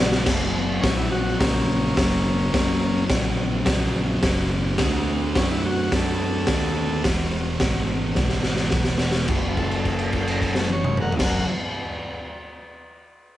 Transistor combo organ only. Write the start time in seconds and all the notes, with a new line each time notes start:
0.81 C#4
0.97 E4
1.11 F#4
1.39 A#3 C#4
5.37 C#4
5.51 E4
5.66 F#4
5.96 A4
9.58 A4
10.15 A4
10.73 C#5
11.02 A#4 F#5
11.23 A#4 F#5